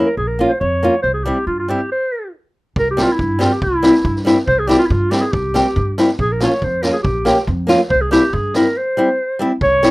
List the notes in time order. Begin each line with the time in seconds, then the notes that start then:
0.06 A#4
0.17 A#1 G#4
0.27 A#4
0.39 A#3 C#4 F4
0.49 C5
0.60 F2 C#5
0.83 A#3 C#4 F4
1.02 C2 C5
1.13 G#4
1.24 G3 C4 E4 G4
1.47 G2 F4
1.59 F4
1.68 G3 C4 E4 G4
1.92 C5
2.76 C2 A#4, kick
2.91 G4
2.97 G3 C4 E4, snare
3.02 F4
3.12 E4
3.19 G2, kick
3.39 G3 C4 G4, snare
3.43 F4
3.52 G4
3.62 C2 E4, kick
3.83 G3 C4 E4, snare
3.94 snare
4.05 G2, kick
4.16 snare
4.25 G3 C4 E4, snare
4.47 C2 C5, kick
4.59 G#4
4.67 G3 C4 E4 G4, snare
4.79 F4
4.86 E4
4.90 G2 F4, kick
5.10 G3 C4 E4 G4, snare
5.21 G#4
5.32 C2 G4, kick
5.54 G3 C4 G4, snare
5.76 G2, kick
5.98 G3 C4 E4, snare
6.19 A#1 G#4, kick
6.32 A#4
6.40 A#3 C#4 F4 C#5, snare
6.52 C#5
6.62 F2 C5, kick
6.82 A#3 C#4 F4 A#4, snare
6.93 G#4
7.02 A#1 G4, kick
7.25 A#3 C#4 G4, snare
7.47 F2, kick
7.67 A#3 C#4 F4, snare
7.90 C2 C5, kick
8.01 G#4
8.11 G3 C4 E4 G4, snare
8.33 G2 G#4, kick
8.54 G3 C4 E4 A#4, snare
8.77 C5
8.97 G3 C4 E4
9.39 G3 C4 E4
9.61 C2 C#5, kick
9.83 G3 C4 E4, snare